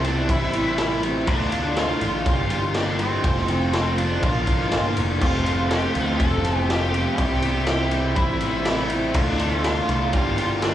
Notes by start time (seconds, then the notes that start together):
Already playing: C2
0.04 C3 E3 G3 C4 D4 E4, ride
0.29 A1 C3 E3 G3 C4 E4, kick, ride
0.53 C3 E3 G3 C4 E4, ride
0.78 C3 E3 G3 C4 E4, snare, ride
1.02 C3 E3 G3 C4 E4, ride
1.27 D2 D3 A3 D4 F4, kick, ride
1.51 D3 A3 D4 F4, ride
1.76 D3 A3 D4 F4, snare, ride
2.01 A1 D3 A3 D4 F4, ride
2.26 G1 G2 D3 G3 A#3 D4 F4 G4, kick, ride
2.50 G2 D3 G3 A#3 D4 F4 G4, ride
2.74 G2 D3 G3 A#3 D4 G4, snare, ride
2.99 G2 D3 G3 A#3 C4 D4 G4, ride
3.24 F1 F2 C3 F3 A3 C4 F4, kick, ride
3.37 snare
3.48 F2 C3 F3 A3 C4 F4, ride
3.73 F2 C3 F3 A3 C4 F4, snare, ride
3.98 F2 C3 F3 A3 C4 D4 F4, ride
4.23 A#1 A#2 D3 A#3 D4 F4, kick, ride
4.47 A#2 D3 A#3 D4 F4, kick, ride
4.60 snare
4.72 G1 A#2 D3 A#3 D4 F4, snare, ride
4.97 F1 A#2 D3 A#3 D4 F4, ride
5.21 F1 F2 C3 F3 A3 C4 F4 G4 A4, kick, crash
5.46 F2 C3 F3 A3 C4 F4, ride
5.69 F2 C3 F3 A3 C4 F4 G4, snare, ride
5.94 D2 F2 C3 F3 A3 C4 F4, ride
6.17 F1 F2 C3 F3 A3 C4 F4 A4, kick, ride
6.44 F2 C3 F3 A3 C4 F4, ride
6.66 F2 C3 F3 A3 G4, ride
6.70 C4 F4, snare
6.91 F2 C3 F3 A3 C4 G4, ride
6.95 F4
7.16 C2 C3 E3 G3 C4 E4 G4 C5, kick, ride
7.42 C3 E3 G3 C4 E4, ride
7.67 C3 E3 G3 C4 E4, snare, ride
7.91 C3 E3 G3 C4 E4, ride
8.15 A1 C3 E3 G3 C4 E4, kick, ride
8.40 C3 E3 G3 C4 E4, ride
8.65 C3 E3 G3 C4 E4, snare, ride
8.90 C3 E3 G3 C4 E4, ride
9.14 D2 D3 A3 D4 F4 A4, kick, ride
9.38 D3 A3 D4 F4, ride
9.63 D3 A3 D4 F4, snare, ride
9.88 C2 D3 A3 D4 F4, ride
10.13 G1 G2 D3 G3 A#3 D4 F4 G4 A#4, kick, ride
10.37 G2 D3 G3 A#3 D4 F4 G4, ride
10.62 G2 D3 G3 A#3 D4 G4, snare, ride